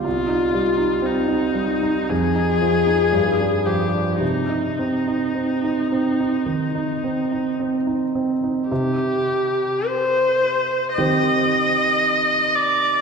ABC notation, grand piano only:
X:1
M:4/4
L:1/16
Q:1/4=55
K:Cm
V:1 name="Grand piano"
C,, E G, E C E G, E F,, E F, E G,, D F, D | C, E C E C E C E E, E C E C E C E | C,8 [E,CG]8 |]